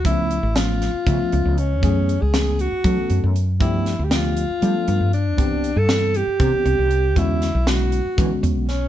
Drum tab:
HH |xxxxxxx|xxxxxxx|xxxxxxx|xxxxxxx|
SD |--oo---|--o----|-oo----|--o----|
BD |o---o--|o---o--|o------|o---o--|

HH |xxxxxxx|
SD |-oo---o|
BD |o---o--|